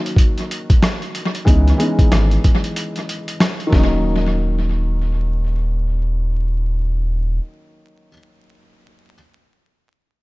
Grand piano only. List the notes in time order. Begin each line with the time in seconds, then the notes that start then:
Already playing: D#3 F#3 A#3 C#4 D#4 F#4
1.45 E3 G#3 B3 C#4 D#4
1.78 E3 G#3 B3 C#4 D#4
3.67 D#3 F#3
3.72 A#3 C#4
3.78 D#4